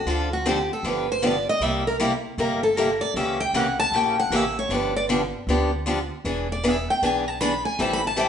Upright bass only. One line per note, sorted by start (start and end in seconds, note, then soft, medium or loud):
0.06 0.68 D2 medium
0.83 1.45 G1 medium
1.60 2.23 C2 medium
2.38 3.00 G1 medium
3.14 3.46 C#2 medium
3.53 3.87 C2 medium
3.92 4.25 A#1 medium
4.30 4.64 A1 medium
4.69 5.32 G1 medium
5.47 6.09 D2 medium
6.25 6.87 E1 medium
7.02 7.64 B1 medium
7.79 8.29 A1 medium